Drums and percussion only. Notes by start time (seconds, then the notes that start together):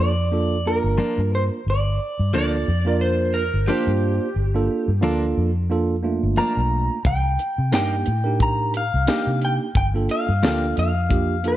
7.05 kick, closed hi-hat
7.39 closed hi-hat
7.73 snare, closed hi-hat, tambourine
8.06 closed hi-hat
8.40 kick, closed hi-hat
8.74 closed hi-hat
9.07 snare, closed hi-hat, tambourine
9.41 closed hi-hat
9.75 kick, closed hi-hat
10.09 closed hi-hat
10.43 snare, closed hi-hat, tambourine
10.77 closed hi-hat
11.11 kick, closed hi-hat
11.44 closed hi-hat